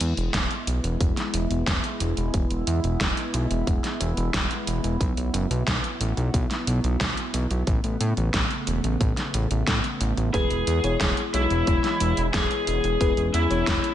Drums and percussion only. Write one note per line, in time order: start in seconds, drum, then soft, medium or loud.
0.01 closed hi-hat medium
0.17 closed hi-hat soft
0.34 kick loud
0.34 snare loud
0.34 closed hi-hat medium
0.51 closed hi-hat soft
0.67 closed hi-hat medium
0.84 closed hi-hat soft
1.01 kick loud
1.01 closed hi-hat medium
1.17 snare soft
1.17 closed hi-hat soft
1.34 closed hi-hat medium
1.51 closed hi-hat soft
1.67 kick loud
1.67 snare loud
1.67 closed hi-hat medium
1.84 closed hi-hat soft
2.00 closed hi-hat medium
2.17 closed hi-hat soft
2.34 kick loud
2.34 closed hi-hat medium
2.50 closed hi-hat soft
2.67 closed hi-hat loud
2.84 closed hi-hat soft
3.01 kick loud
3.01 snare loud
3.01 closed hi-hat medium
3.17 closed hi-hat soft
3.34 closed hi-hat medium
3.51 closed hi-hat soft
3.67 kick loud
3.67 closed hi-hat medium
3.84 snare soft
3.84 closed hi-hat soft
4.01 closed hi-hat medium
4.17 closed hi-hat soft
4.34 kick loud
4.34 snare loud
4.34 closed hi-hat medium
4.51 closed hi-hat soft
4.67 closed hi-hat loud
4.84 closed hi-hat soft
5.01 kick loud
5.01 closed hi-hat medium
5.17 closed hi-hat soft
5.34 closed hi-hat medium
5.51 closed hi-hat soft
5.67 kick loud
5.67 snare loud
5.67 closed hi-hat medium
5.84 closed hi-hat soft
6.01 closed hi-hat medium
6.17 closed hi-hat soft
6.34 kick loud
6.34 closed hi-hat medium
6.51 snare soft
6.51 closed hi-hat soft
6.67 closed hi-hat medium
6.84 closed hi-hat soft
7.01 kick loud
7.01 snare loud
7.01 closed hi-hat medium
7.17 closed hi-hat soft
7.34 closed hi-hat medium
7.51 closed hi-hat soft
7.67 kick loud
7.67 closed hi-hat medium
7.84 closed hi-hat soft
8.01 closed hi-hat medium
8.17 closed hi-hat soft
8.34 kick loud
8.34 snare loud
8.34 closed hi-hat medium
8.51 closed hi-hat soft
8.67 closed hi-hat medium
8.84 closed hi-hat soft
9.01 kick loud
9.01 closed hi-hat medium
9.17 snare soft
9.17 closed hi-hat soft
9.34 closed hi-hat medium
9.51 closed hi-hat soft
9.67 kick loud
9.67 snare loud
9.67 closed hi-hat medium
9.84 closed hi-hat soft
10.01 closed hi-hat medium
10.17 closed hi-hat soft
10.34 kick loud
10.34 closed hi-hat medium
10.51 closed hi-hat soft
10.67 closed hi-hat medium
10.84 closed hi-hat soft
11.01 kick loud
11.01 snare loud
11.01 closed hi-hat medium
11.17 closed hi-hat soft
11.34 closed hi-hat medium
11.50 closed hi-hat soft
11.67 kick loud
11.67 closed hi-hat medium
11.84 snare soft
11.84 closed hi-hat soft
12.00 closed hi-hat medium
12.17 closed hi-hat soft
12.34 kick loud
12.34 snare loud
12.34 closed hi-hat medium
12.51 closed hi-hat soft
12.67 closed hi-hat medium
12.84 closed hi-hat soft
13.01 kick loud
13.01 closed hi-hat medium
13.17 closed hi-hat soft
13.34 closed hi-hat medium
13.51 closed hi-hat soft
13.67 kick loud
13.67 snare loud
13.67 closed hi-hat medium
13.84 closed hi-hat soft